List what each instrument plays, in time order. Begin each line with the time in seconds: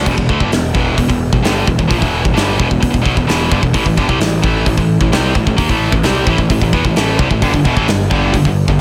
0.04 picked electric bass E1, distorted electric guitar E2 B2, kick, crash
0.17 picked electric bass E1, distorted electric guitar E2 B2, kick
0.29 picked electric bass D2, distorted electric guitar D3 A3, kick
0.40 picked electric bass G1, distorted electric guitar G2 D3, kick
0.52 picked electric bass E1, distorted electric guitar E2 B2, snare, open hi-hat
0.74 picked electric bass E1, distorted electric guitar E2 B2 E3, kick
0.97 picked electric bass E1, distorted electric guitar E2 B2, kick, open hi-hat
1.08 picked electric bass E1, distorted electric guitar E2 B2, kick
1.32 picked electric bass E1, distorted electric guitar E2 B2, kick
1.43 picked electric bass G1, distorted electric guitar G2 D3 G3, snare, open hi-hat
1.67 picked electric bass E1, distorted electric guitar E2 B2, kick
1.79 picked electric bass E1, distorted electric guitar E2 B2, kick
1.88 picked electric bass A#1, distorted electric guitar A#2 F3, kick, open hi-hat
1.98 distorted electric guitar E2 B2 E3
2.02 picked electric bass E1, kick
2.23 picked electric bass E1, distorted electric guitar E2 B2, kick
2.34 picked electric bass G1, distorted electric guitar G2 D3 G3, snare, open hi-hat
2.57 picked electric bass E1, distorted electric guitar E2 B2, kick
2.69 picked electric bass E1, distorted electric guitar E2 B2, kick
2.80 picked electric bass E1, distorted electric guitar E2 B2, kick, open hi-hat
2.90 picked electric bass E1, distorted electric guitar E2 B2, kick
3.02 picked electric bass B1, distorted electric guitar B2 F#3, kick
3.16 picked electric bass E1, distorted electric guitar E2 B2, kick
3.27 picked electric bass E1, distorted electric guitar E2 B2 E3, snare, open hi-hat
3.51 picked electric bass G1, distorted electric guitar G2 D3, kick
3.62 picked electric bass E1, distorted electric guitar E2 B2, kick
3.74 picked electric bass A1, distorted electric guitar A2 E3, kick, open hi-hat
3.86 picked electric bass A1, distorted electric guitar A2 E3, kick
3.97 picked electric bass G1, distorted electric guitar G2 D3, kick
4.08 picked electric bass C2, distorted electric guitar C3 G3, kick
4.20 picked electric bass A1, distorted electric guitar A2 E3, snare, open hi-hat
4.43 picked electric bass A1, distorted electric guitar A2 E3 A3, kick
4.66 picked electric bass A1, distorted electric guitar A2 E3, kick, open hi-hat
4.78 picked electric bass A1, distorted electric guitar A2 E3, kick
5.01 picked electric bass A1, distorted electric guitar A2 E3, kick
5.12 picked electric bass C2, distorted electric guitar C3 G3 C4, snare, open hi-hat
5.35 picked electric bass A1, distorted electric guitar A2 E3, kick
5.47 picked electric bass A1, distorted electric guitar A2 E3, kick
5.57 picked electric bass D#2, distorted electric guitar D#3 A#3, kick, open hi-hat
5.69 picked electric bass A1, distorted electric guitar A2 E3 A3, kick
5.91 picked electric bass A1, distorted electric guitar A2 E3, kick
6.03 picked electric bass C2, distorted electric guitar C3 G3 C4, snare, open hi-hat
6.26 picked electric bass A1, distorted electric guitar A2 E3, kick
6.38 picked electric bass A1, distorted electric guitar A2 E3, kick
6.50 picked electric bass A1, distorted electric guitar A2 E3, kick, open hi-hat
6.61 picked electric bass A1, distorted electric guitar A2 E3, kick
6.73 picked electric bass E2, distorted electric guitar E3 B3, kick
6.84 picked electric bass A1, distorted electric guitar A2 E3, kick
6.96 picked electric bass A1, distorted electric guitar A2 E3 A3, snare, open hi-hat
7.19 picked electric bass C2, distorted electric guitar C3 G3, kick
7.31 picked electric bass A1, distorted electric guitar A2 E3, kick
7.42 picked electric bass G1, distorted electric guitar G2 D3, kick, open hi-hat
7.54 picked electric bass G1, distorted electric guitar G2 D3, kick
7.65 picked electric bass E1, distorted electric guitar E2 B2, kick
7.77 picked electric bass A1, distorted electric guitar A2 E3, kick
7.88 picked electric bass G1, distorted electric guitar G2 D3, snare, open hi-hat
8.11 picked electric bass G1, distorted electric guitar G2 D3 G3, kick
8.33 picked electric bass G1, distorted electric guitar G2 D3, kick, open hi-hat
8.45 picked electric bass G1, distorted electric guitar G2 D3, kick
8.68 picked electric bass G1, distorted electric guitar G2 D3, kick